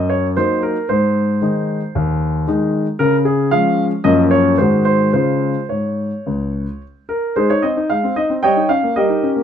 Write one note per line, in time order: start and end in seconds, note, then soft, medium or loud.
0.00 0.36 F#2 soft
0.00 0.10 D#5 medium
0.10 0.26 C#5 medium
0.37 0.75 F#3 soft
0.37 0.75 A#3 soft
0.37 0.76 D#4 soft
0.37 0.61 C5 medium
0.63 0.87 A#4 medium
0.89 1.40 G#2 soft
0.89 2.69 C5 medium
1.42 1.80 D#3 soft
1.42 1.80 G#3 soft
1.42 1.80 D#4 soft
1.95 2.46 D#2 soft
2.48 2.85 D#3 soft
2.48 2.85 G#3 soft
2.48 2.86 D#4 soft
2.99 3.51 C#3 soft
2.99 3.15 A#4 medium
3.25 3.52 G#4 medium
3.51 3.90 F3 soft
3.51 3.90 G#3 soft
3.51 3.90 C#4 soft
3.51 3.83 F5 medium
4.04 4.57 F#2 medium
4.04 4.54 F3 soft
4.04 4.54 A#3 soft
4.04 4.55 C#4 soft
4.04 4.20 D#5 medium
4.31 4.55 C#5 medium
4.58 5.11 G#2 soft
4.58 5.09 D#3 soft
4.58 5.09 G#3 soft
4.58 5.10 F#4 soft
4.58 4.83 C5 medium
4.85 5.10 C5 medium
5.13 5.53 C#3 soft
5.13 5.58 G#3 soft
5.13 5.58 F4 soft
5.13 5.65 C5 medium
5.69 6.09 G#2 soft
5.69 6.81 C#5 soft
6.26 6.65 C#2 soft
7.09 7.36 A#4 medium
7.36 7.49 G#3 soft
7.36 7.48 D#4 soft
7.36 7.49 G#4 soft
7.36 7.50 C5 medium
7.50 7.64 D#4 soft
7.50 7.63 C#5 medium
7.62 7.77 C4 soft
7.62 7.87 D#5 medium
7.77 7.91 D#4 soft
7.90 8.03 G#3 soft
7.90 8.14 F5 medium
8.04 8.18 C4 soft
8.16 8.31 D#4 soft
8.16 8.32 D#5 medium
8.30 8.43 C4 soft
8.43 8.56 G3 soft
8.43 8.68 C#5 medium
8.43 8.68 D#5 medium
8.43 8.69 G5 medium
8.57 8.70 D#4 soft
8.69 8.84 C#4 soft
8.69 8.93 F5 medium
8.83 8.97 A#3 soft
8.96 9.09 G3 soft
8.96 9.43 G4 soft
8.96 9.43 A#4 soft
8.96 9.28 D#5 medium
9.09 9.23 D#4 soft
9.23 9.37 C#4 soft
9.36 9.43 A#3 soft